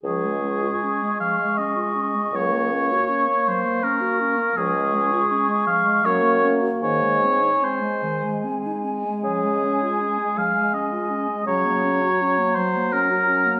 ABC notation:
X:1
M:3/4
L:1/16
Q:1/4=80
K:Db
V:1 name="Flute"
d'12- | d'12 | d'8- d'2 z2 | a12- |
a12 | b8- b2 z2 |]
V:2 name="Oboe"
A6 f2 e4 | d6 c2 B4 | A6 f2 d2 z2 | d4 c4 z4 |
A6 f2 e4 | d6 c2 B4 |]
V:3 name="Clarinet"
F, A, D F D A, F, A, D F D A, | G, B, D G D B, G, B, D G D B, | F, A, D F D A, F, A, G, B, D G | E, A, C E C A, E, A, C E C A, |
F, A, D F D A, F, A, D F D A, | G, B, D G D B, G, B, D G D B, |]
V:4 name="French horn" clef=bass
A,12 | B,12 | A,8 B,4- | B,2 z2 A,8- |
A,12 | G,12 |]
V:5 name="Bassoon" clef=bass
D,,4 z8 | D,,4 z8 | D,,4 z4 G,,4 | A,,4 z8 |
D,4 z8 | D,4 z8 |]